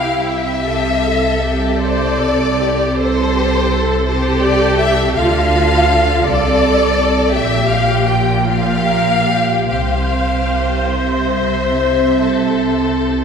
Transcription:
0.00 0.61 C2 medium
0.00 0.61 C3 medium
0.00 0.65 E4 medium
0.00 0.63 G4 medium
0.00 0.26 F5 loud
0.25 1.79 E5 loud
0.65 5.13 C2 medium
0.65 5.13 C3 medium
0.65 1.02 G4 medium
0.65 2.97 A4 medium
1.04 1.41 A4 medium
1.42 1.80 G4 medium
1.78 2.18 C5 medium
1.78 2.96 D5 loud
2.18 2.57 A4 medium
2.60 2.97 G4 medium
2.95 4.07 A4 medium
2.95 4.05 C5 loud
2.99 3.35 A4 medium
3.37 3.72 G4 medium
3.74 4.09 A4 loud
4.06 5.15 A4 medium
4.06 4.43 C5 loud
4.11 5.19 G4 loud
4.41 4.79 D5 loud
4.78 5.15 E5 loud
5.15 6.22 D2 loud
5.15 6.23 D3 medium
5.15 6.23 A4 medium
5.15 6.22 F5 loud
5.19 6.24 F4 loud
6.24 7.33 C2 medium
6.24 7.33 C3 medium
6.24 7.31 A4 medium
6.24 7.34 A4 loud
6.24 7.33 D5 loud
7.32 9.69 A#1 medium
7.32 9.69 A#2 medium
7.32 8.45 G4 medium
7.32 8.46 G4 medium
7.32 7.69 E5 loud
7.69 8.07 F5 loud
8.07 8.46 G5 loud
8.45 8.86 F4 medium
8.45 9.67 G4 medium
8.45 9.68 F5 loud
8.87 9.27 A#4 medium
9.27 9.68 G4 medium
9.68 13.24 C2 medium
9.68 13.24 C3 medium
9.68 10.94 G4 medium
9.68 13.24 C5 medium
9.68 10.94 F5 loud
10.95 12.18 C5 medium
10.95 13.24 E5 medium
12.23 13.24 A4 medium

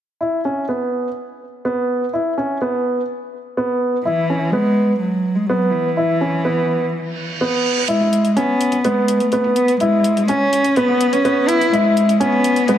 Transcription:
0.21 0.40 E4 medium
0.45 0.64 C#4 medium
0.69 1.07 B3 medium
1.65 2.04 B3 medium
2.13 2.32 E4 medium
2.38 2.57 C#4 medium
2.62 3.00 B3 medium
3.57 3.96 B3 medium
4.05 4.53 E3 medium
4.05 4.24 E4 medium
4.30 4.49 C#4 medium
4.51 4.98 G#3 loud
4.51 4.92 B3 medium
4.99 5.37 F#3 medium
5.35 5.48 G#3 medium
5.46 5.72 F#3 medium
5.46 5.88 B3 medium
5.71 7.40 E3 medium
5.97 6.16 E4 medium
6.21 6.40 C#4 medium
6.45 6.83 B3 medium
6.93 reverse cymbal medium
7.41 7.79 B3 medium
7.88 8.39 G#3 medium
7.88 8.27 E4 medium
7.88 closed hi-hat soft
7.88 riser medium
8.01 mid tom medium
8.13 closed hi-hat medium
8.25 closed hi-hat soft
8.36 8.87 B3 medium
8.36 8.75 C#4 medium
8.36 closed hi-hat soft
8.36 mid tom medium
8.61 closed hi-hat medium
8.72 closed hi-hat soft
8.72 mid tom medium
8.84 9.22 G#3 medium
8.84 9.23 B3 medium
8.84 closed hi-hat soft
9.08 closed hi-hat medium
9.08 mid tom medium
9.20 9.57 A3 medium
9.20 closed hi-hat soft
9.32 9.71 B3 medium
9.32 closed hi-hat soft
9.44 mid tom medium
9.55 9.80 B3 medium
9.55 closed hi-hat medium
9.68 closed hi-hat soft
9.80 10.30 G#3 medium
9.80 10.19 E4 medium
9.80 closed hi-hat soft
9.80 mid tom medium
10.04 closed hi-hat medium
10.17 closed hi-hat soft
10.17 mid tom medium
10.28 10.79 C#4 loud
10.28 10.68 C#4 medium
10.28 closed hi-hat soft
10.53 closed hi-hat medium
10.53 mid tom medium
10.64 closed hi-hat soft
10.76 11.15 B3 medium
10.76 11.15 B3 loud
10.76 closed hi-hat soft
10.88 mid tom medium
11.01 closed hi-hat medium
11.13 11.50 C#4 medium
11.13 closed hi-hat soft
11.25 11.63 B3 medium
11.25 closed hi-hat soft
11.25 mid tom medium
11.48 11.74 E4 loud
11.48 closed hi-hat medium
11.61 closed hi-hat soft
11.61 mid tom medium
11.72 12.22 G#3 loud
11.72 12.12 E4 medium
11.72 closed hi-hat soft
11.97 closed hi-hat medium
11.97 mid tom medium
12.09 closed hi-hat soft
12.20 12.70 B3 loud
12.20 12.59 C#4 medium
12.20 closed hi-hat soft
12.32 mid tom medium
12.44 closed hi-hat medium
12.56 closed hi-hat soft
12.68 12.78 G#3 medium
12.68 12.78 B3 medium
12.68 closed hi-hat soft
12.68 mid tom medium

